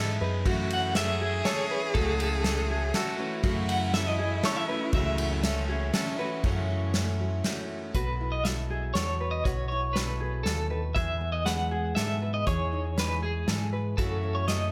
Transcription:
Already playing: G#2 E3 B3 D#4 G#4 A4 D#5
0.00 G#4
0.20 F#2 B3 D#4 G#4 B4
0.45 F#2 C#3 E3 A3 C#4 F#4, kick, ride
0.70 F#5, ride
0.95 E3 A3 C#4 F#4 G#4 A4 E5, snare, ride
1.21 G#4
1.43 E3 A3 C#4 F#4 A4 C#5, snare, ride
1.71 B4
1.94 C#2 F#2 C#3 E3 A3 C#4 F#4 A4, kick, ride
2.19 A4, ride
2.44 E3 A3 C#4 F#4 A4, snare, ride
2.68 E3 A3 C#4 F#4 G#4
2.93 E3 A3 C#4 F#4 A4, snare, ride
3.18 E3 A3 C#4 F#4 B4
3.43 F#2 C#3 E3 A3 C#4 E4 F#4, kick, ride
3.69 F#5, ride
3.93 E3 A3 C#4 F#4 A4 E5, snare, ride
4.07 D#5
4.19 G#4
4.43 E3 A3 C#4 F#4 A4 C#5, snare, ride
4.56 E5
4.68 E3 A3 C#4 F#4 B4
4.93 C#2 F#2 C#3 E3 A3 C#4 F#4 E5, kick, ride
5.18 ride
5.42 E3 A3 C#4 F#4 A4, snare, ride
5.68 E3 A3 C#4 F#4 G#4
5.93 E3 A3 C#4 F#4 A4, snare, ride
6.18 E3 A3 C#4 F#4 B4
6.44 F#2 C#3 E3 A3 C#4 E4 F#4 A4, kick, ride
6.70 E4
6.93 E3 A3 C#4 F#4, snare, ride
7.20 F#3
7.44 E3 A3 C#4 F#4, snare, ride
7.94 B1 B2 F#4 A4 B4, kick, closed hi-hat
8.21 E4
8.32 D#5
8.44 F#3 A4 E5, snare, closed hi-hat
8.70 G#4 A4
8.94 E2 F#3 A4 C#5, snare, closed hi-hat
9.20 B4
9.31 D#5
9.44 B1 B2 F#4 B4 C#5, kick, closed hi-hat
9.68 E4 C#5
9.93 F#3 A4 B4, snare, closed hi-hat
10.20 G#4 A4
10.43 D#2 C#3 A4, snare, closed hi-hat
10.70 D#3 B4
10.94 E2 E3 G#4 B4 E5, kick, closed hi-hat
11.21 B3
11.32 D#5
11.44 G#3 B4 F#5, snare, closed hi-hat
11.71 G#4
11.95 G#2 B2 A4 E5, snare, closed hi-hat
12.22 B4
12.34 D#5
12.46 E2 E3 G#4 C#5, kick, closed hi-hat
12.73 D#4
12.96 G#3 B4, snare, closed hi-hat
13.22 E4 G#4
13.46 G#2 E3 A4, snare, closed hi-hat
13.73 B4
13.97 F#2 C#3 E3 A3 C#4 E4 F#4 A4, kick, closed hi-hat
14.23 C#4
14.35 C#5
14.47 E3 F#3 A3 C#4 F#4 A4 D#5, snare, closed hi-hat

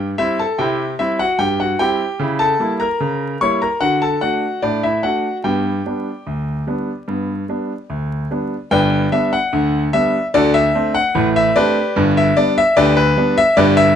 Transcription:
Already playing: G2 G4
0.18 G3 C4 E4 E5
0.39 A4 A5
0.58 C3 E4 G4 G5
0.99 G3 C4 E4 E5
1.19 F#4 F#5
1.39 G2 G4 G5
1.60 F#4 F#5
1.79 G3 C4 E4 G4 G5
2.19 C#3 E4
2.39 A4 A5
2.60 G3 A#3 E4
2.80 A#4 A#5
3.00 C#3
3.41 G3 A#3 E4 C#5 C#6
3.62 A#4 A#5
3.81 D3 F#4 F#5
4.02 A4 A5
4.21 A3 D4 F#4 F#5
4.62 A2 D4 D5
4.83 E4 E5
5.03 A3 D4 F#4 F#5
5.44 G2 B3 G4 G5
5.86 G3 B3 D4
6.27 D2
6.67 G3 B3 D4
7.08 G2 B3
7.49 G3 B3 D4
7.90 D2
8.31 G3 B3 D4
8.71 G1 G2 B4 D5 G5
9.12 G3 B3 D4 E5
9.33 F#5
9.53 D2 D3
9.93 G3 B3 D4 E5
10.34 D2 D3 F#4 A4 D5
10.54 E5
10.75 A3 C4 D4
10.95 F#5
11.15 A1 A2
11.36 E5
11.56 A3 C4 D4 G4 B4 D5
11.96 G1 G2
12.17 E5
12.37 G3 B3 D4 D5
12.58 E5
12.77 D2 D3 G4 B4 D5
12.97 B4
13.17 G3 B3 D4
13.38 E5
13.57 G1 G2 G4 B4 D5
13.77 E5

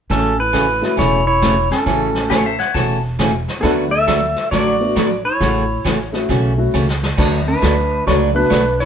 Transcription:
0.10 A1 C#3 E3 A3 C#4 F#4 A4, brush sweep, kick, snare
0.40 E4 B4
0.53 C#3 E3 A3 C#4 F#4, kick, snare, hi-hat pedal
0.81 A3 C#4 E4 F#4, snare
0.96 E1 C#3 E3 A3 C#4 E4 F#4 C#5, brush sweep, kick, snare
1.27 E4 C#5
1.42 C#3 E3 A3 C#4 F#4, kick, snare, hi-hat pedal
1.71 C#4 A4, snare
1.85 A1 C#3 E3 A3 C#4 E4 F#4, brush sweep, kick, snare
2.15 snare
2.30 C#3 E3 A3 C#4 F#4 A4 C#5, kick, snare, hi-hat pedal
2.45 C5 E5
2.59 C#5 F#5, snare
2.74 E1 C#3 E3 A3 C#4 F#4 A5, brush sweep, kick, snare
3.19 C#3 E3 A3 C#4 F#4, kick, snare, hi-hat pedal
3.48 snare
3.59 D2 D3 F#3 A3 B3 D4 F#4 G#4 A4, kick
3.63 F#4 B4, brush sweep, snare
3.91 A4 E5
4.07 D3 F#3 A3 D4 F#4 B4, kick, snare, hi-hat pedal
4.36 snare
4.51 A1 D3 F#3 A3 D4 F#4 B4 D5, brush sweep, kick, snare
4.80 A3 B3 D4 F#4
4.95 D3 F#3 A3 D4 F#4 B4, kick, snare, hi-hat pedal
5.25 E4 C#5
5.40 A1 C#3 E3 A3 C#4 F#4, brush sweep, kick, snare
5.84 A1 C#3 E3 A3 C#4 F#4, kick, snare, hi-hat pedal
6.12 A3 C#4 E4 F#4, snare
6.29 B1 C#3 E3 A3 C#4 F#4, brush sweep, kick, snare
6.57 A3 C#4 E4 F#4
6.74 C#2 C#3 E3 A3 C#4 F#4, hi-hat pedal
6.89 snare
7.03 snare
7.17 D2 D3 F#3 A3 D4 F#4 A4 B4, brush sweep, kick, snare, crash
7.47 D4 B4
7.62 D2 D3 F#3 A3 D4 F#4 B4, kick, snare, hi-hat pedal
8.07 C#2 D3 F#3 A3 D4 F#4 B4 C#5, brush sweep, kick, snare
8.34 A3 B3 D4 F#4 B4
8.50 B1 D3 F#3 A3 D4 F#4 B4, kick, snare, hi-hat pedal
8.80 E4 C#5, snare

